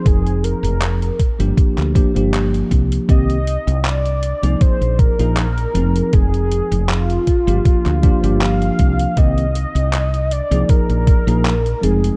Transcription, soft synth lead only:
X:1
M:4/4
L:1/8
Q:"Swing 16ths" 1/4=79
K:Fdor
V:1 name="Soft synth lead"
A B3 z4 | e2 d2 c B3 | A2 F4 f2 | e3 d B3 A |]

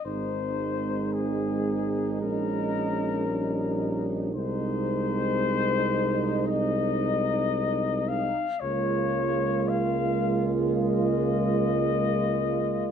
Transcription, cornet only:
X:1
M:4/4
L:1/16
Q:1/4=56
K:Ab
V:1 name="Cornet"
c4 A4 B6- B z | c8 e6 f2 | d4 f3 z e8 |]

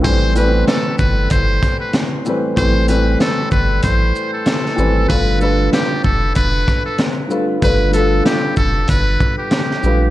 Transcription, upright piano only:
X:1
M:4/4
L:1/8
Q:"Swing 16ths" 1/4=95
K:Am
V:1 name="Upright piano"
[A,,E,G,CB] [A,,E,G,B,CB]3 z3 [A,,E,G,CB] | [A,,E,G,CB] [A,,E,G,CB]3 z3 [A,,E,G,CB] | [G,,D,A,FB] [G,,D,A,FB]3 z3 [G,,D,A,FB] | [G,,D,A,FB] [G,,D,A,FA]3 z3 [G,,D,A,FB] |]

